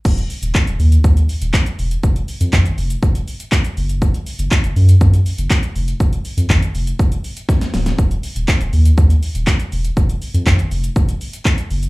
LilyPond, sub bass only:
\new Staff \with { instrumentName = "Sub bass" } { \clef bass \time 4/4 \key f \phrygian \tempo 4 = 121 ees,,8 r16 ees,,16 r16 ees,,16 ees,8 ees,8 r16 ees,,16 r8 e,,8 | f,,8 r16 f,16 aes,,8 f,,8 f,,8 r4 ges,,8~ | ges,,8 r16 ges,,16 r16 ges,,16 ges,8 ges,8 r16 ges,,16 r8 f,,8 | f,,8 r16 f,16 aes,,8 f,,8 f,,8 r4 d,,8 |
ees,,8 r16 ees,,16 r16 ees,,16 ees,8 ees,8 r16 ees,,16 r8 e,,8 | f,,8 r16 f,16 aes,,8 f,,8 f,,8 r4 ges,,8 | }